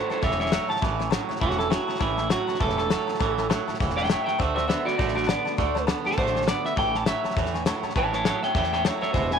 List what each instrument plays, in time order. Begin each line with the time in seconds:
Already playing: clean electric guitar A2 F#3 A4 C5, steel-string acoustic guitar E3 A3
0.10 steel-string acoustic guitar A3 C#4 E4, clean electric guitar A4 C5, honky-tonk piano C#5 E5 A5, muted upright bass stroke, snare
0.22 upright bass E1, steel-string acoustic guitar A2 E3 A3 C#4 E4, honky-tonk piano C#5 E5 B5, clean electric guitar C#5 E5, kick, snare
0.31 snare
0.39 steel-string acoustic guitar A3 C#4 E4, honky-tonk piano C#5 E5 G#5, clean electric guitar C#5 E5, snare
0.46 snare
0.51 clean electric guitar A2 F#3 C#5 E5, steel-string acoustic guitar E3 A3 C#4, honky-tonk piano C#5 E5 F#5, snare, hi-hat pedal
0.55 steel-string acoustic guitar E4
0.68 steel-string acoustic guitar C#4 E4, honky-tonk piano C#5 E5 A5, clean electric guitar A5, muted upright bass stroke, snare
0.73 steel-string acoustic guitar A3, snare
0.81 upright bass A1, steel-string acoustic guitar A2 E3 A3 C#4 E4, honky-tonk piano C#5 E5 A5, kick, snare
0.99 steel-string acoustic guitar A3 C#4 E4, honky-tonk piano C#5 E5 G#5, snare
1.10 clean electric guitar A2 F#3, steel-string acoustic guitar E3 C#4, honky-tonk piano C#5 E5 A5, snare, hi-hat pedal
1.14 steel-string acoustic guitar E4
1.29 steel-string acoustic guitar A3 C#4 E4, honky-tonk piano C#5 E5 F#5, muted upright bass stroke, snare
1.36 snare
1.40 upright bass E1, steel-string acoustic guitar A2 E3 A3 C#4 E4, clean electric guitar F#4, honky-tonk piano C#5 E5 A5, kick, snare
1.51 snare
1.58 steel-string acoustic guitar C#4 E4, clean electric guitar A4, honky-tonk piano C#5 E5 A5, snare
1.62 steel-string acoustic guitar A3
1.70 clean electric guitar A2 F#3 F#4, steel-string acoustic guitar E3 A3 C#4, honky-tonk piano C#5 E5 G#5, snare, hi-hat pedal
1.74 steel-string acoustic guitar E4
1.87 steel-string acoustic guitar A3 C#4 E4, honky-tonk piano C#5 E5 A5, muted upright bass stroke, snare
1.95 snare
1.99 upright bass A1, steel-string acoustic guitar A2 E3 A3 C#4 E4, clean electric guitar E4, honky-tonk piano C#5 E5 A5, kick, snare
2.17 steel-string acoustic guitar A3 C#4 E4, honky-tonk piano C#5 E5 A5, snare
2.30 clean electric guitar A2 F#3 F#4, steel-string acoustic guitar E3 A3 C#4 E4, honky-tonk piano C#5 E5 A5, snare, hi-hat pedal
2.47 steel-string acoustic guitar C#4 E4, honky-tonk piano C#5 E5 A5, snare
2.51 steel-string acoustic guitar A3, snare
2.59 upright bass E1, steel-string acoustic guitar A2 E3 A3 C#4 E4, clean electric guitar A4, honky-tonk piano C#5 E5 A5, kick, snare
2.70 snare
2.77 steel-string acoustic guitar A3 C#4 E4, clean electric guitar A4, honky-tonk piano C#5 E5 A5, snare
2.89 clean electric guitar A2 F#3, steel-string acoustic guitar E3 A3 C#4, honky-tonk piano C#5 E5 A5, snare, hi-hat pedal
2.93 steel-string acoustic guitar E4
3.07 steel-string acoustic guitar A3 C#4 E4, honky-tonk piano C#5 E5 A5, muted upright bass stroke, snare
3.14 snare
3.19 upright bass A1, steel-string acoustic guitar A2 E3 A3 C#4 E4, honky-tonk piano C#5 E5 A5, kick, snare
3.38 steel-string acoustic guitar A3 C#4 E4, honky-tonk piano C#5 E5 A5, snare
3.49 clean electric guitar A2 F#3, steel-string acoustic guitar E3 A3 C#4 E4, honky-tonk piano C#5 E5 A5, snare, hi-hat pedal
3.68 steel-string acoustic guitar A3 C#4 E4, honky-tonk piano C#5 E5 A5, muted upright bass stroke, snare
3.74 snare
3.80 upright bass E1, steel-string acoustic guitar A2 E3 A3 C#4 E4, honky-tonk piano C#5 E5 F#5, kick, snare
3.90 snare
3.97 steel-string acoustic guitar A3 C#4 E4, honky-tonk piano C#5 E5 B5, clean electric guitar E5 G5, snare
4.04 snare
4.09 clean electric guitar A2 F#3 E5, steel-string acoustic guitar E3 A3 C#4 E4, honky-tonk piano C#5 E5 A5, snare, hi-hat pedal
4.24 steel-string acoustic guitar C#4 E4, honky-tonk piano C#5 E5 A5, clean electric guitar E5 G5, muted upright bass stroke, snare
4.29 steel-string acoustic guitar A3
4.38 upright bass D2, steel-string acoustic guitar D3 A3 D4 F#4, clean electric guitar C5 E5, honky-tonk piano D5 F#5 A5, kick, snare
4.55 steel-string acoustic guitar D4 F#4, clean electric guitar C5 E5, honky-tonk piano D5 F#5 A5, snare
4.60 steel-string acoustic guitar A3
4.68 steel-string acoustic guitar D3 A3 D4, clean electric guitar B3 C5 E5, honky-tonk piano D5 F#5 B5, snare, hi-hat pedal
4.72 steel-string acoustic guitar F#4
4.85 steel-string acoustic guitar D4 F#4, clean electric guitar F#4 D5, honky-tonk piano D5 F#5 B5, muted upright bass stroke, snare
4.90 steel-string acoustic guitar A3
4.97 upright bass A1, steel-string acoustic guitar D3 A3 D4, clean electric guitar F#4 D5, honky-tonk piano D5 F#5 A5, kick, snare
5.01 steel-string acoustic guitar F#4
5.08 snare
5.15 steel-string acoustic guitar A3 D4 F#4, clean electric guitar F#4 D5, honky-tonk piano D5 F#5 A5, snare
5.23 honky-tonk piano D5 F#5 A5, snare
5.28 steel-string acoustic guitar D3 A3 D4 F#4, clean electric guitar B3 D5, snare, hi-hat pedal
5.45 steel-string acoustic guitar D4 F#4, honky-tonk piano D5 F#5 A5, snare
5.49 steel-string acoustic guitar A3
5.57 upright bass D2, steel-string acoustic guitar D3 A3 D4 F#4, honky-tonk piano D5 F#5 B5, kick, snare
5.74 steel-string acoustic guitar D4 F#4, honky-tonk piano D5 F#5 A5, snare
5.79 steel-string acoustic guitar A3
5.87 steel-string acoustic guitar D3 A3 D4 F#4, clean electric guitar B3, honky-tonk piano D5 F#5 A5, snare, hi-hat pedal
6.04 steel-string acoustic guitar A3 D4 F#4, clean electric guitar A4, honky-tonk piano D5 F#5 A5, muted upright bass stroke, snare
6.12 snare
6.17 upright bass A1, steel-string acoustic guitar D3 A3 D4 F#4, clean electric guitar C5, honky-tonk piano D5 F#5 A5, kick, snare
6.27 snare
6.35 steel-string acoustic guitar A3 D4 F#4, honky-tonk piano D5 F#5 G#5, snare
6.42 snare
6.46 steel-string acoustic guitar D3 A3 D4 F#4, clean electric guitar B3 D5, honky-tonk piano D5 F#5 A5, snare, hi-hat pedal
6.64 steel-string acoustic guitar A3 D4 F#4, honky-tonk piano D5 F#5 B5, clean electric guitar E5, muted upright bass stroke, snare
6.76 upright bass A1, steel-string acoustic guitar A2 E3 A3 C#4 E4, honky-tonk piano C#5 E5 A5, clean electric guitar G5, kick, snare
6.92 steel-string acoustic guitar A3 C#4 E4, clean electric guitar A5, snare
6.96 honky-tonk piano C#5 E5 A5
7.05 clean electric guitar A2 F#3 E5, steel-string acoustic guitar E3 A3 C#4 E4, honky-tonk piano C#5 E5 A5, snare, hi-hat pedal
7.24 steel-string acoustic guitar A3 C#4 E4, honky-tonk piano C#5 E5 A5, muted upright bass stroke, snare
7.30 snare
7.36 upright bass E2, steel-string acoustic guitar A2 E3 A3 C#4 E4, honky-tonk piano C#5 E5 A5, kick, snare
7.46 snare
7.54 steel-string acoustic guitar A3 C#4 E4, honky-tonk piano C#5 E5 G#5, snare
7.65 clean electric guitar A2 F#3, steel-string acoustic guitar E3 A3 C#4 E4, honky-tonk piano C#5 E5 A5, snare, hi-hat pedal
7.83 steel-string acoustic guitar A3 C#4 E4, honky-tonk piano C#5 E5 A5, muted upright bass stroke, snare
7.90 snare
7.95 upright bass A1, steel-string acoustic guitar A2 E3 A3 C#4 E4, honky-tonk piano C#5 E5 A5, clean electric guitar C#5 A5, kick, snare
8.13 steel-string acoustic guitar A3 C#4 E4, honky-tonk piano C#5 E5 A5, clean electric guitar C#5 A5, snare
8.25 clean electric guitar A2 F#3 C#5 A5, steel-string acoustic guitar E3 A3 C#4 E4, honky-tonk piano C#5 E5 B5, snare, hi-hat pedal
8.42 steel-string acoustic guitar A3 C#4 E4, honky-tonk piano C#5 E5 G#5, clean electric guitar E5 G5, muted upright bass stroke, snare
8.55 upright bass E2, steel-string acoustic guitar A2 E3 A3 C#4 E4, honky-tonk piano C#5 E5 A5, clean electric guitar E5 G5, kick, snare
8.64 snare
8.73 steel-string acoustic guitar A3 C#4 E4, honky-tonk piano C#5 E5 A5, clean electric guitar E5 G5, snare
8.84 clean electric guitar A2 F#3 C#5 E5, steel-string acoustic guitar E3 A3 C#4 E4, honky-tonk piano C#5 E5 A5, snare, hi-hat pedal
9.01 steel-string acoustic guitar A3 C#4 E4, honky-tonk piano C#5 E5 A5, clean electric guitar C#5 E5, muted upright bass stroke, snare
9.13 upright bass E1, steel-string acoustic guitar E2 B2 E3 G#3 B3 E4, honky-tonk piano B4 E5 G#5, clean electric guitar C5 E5, kick, snare
9.31 steel-string acoustic guitar E3 G#3 B3 E4, honky-tonk piano B4 E5 B5, clean electric guitar G#5, snare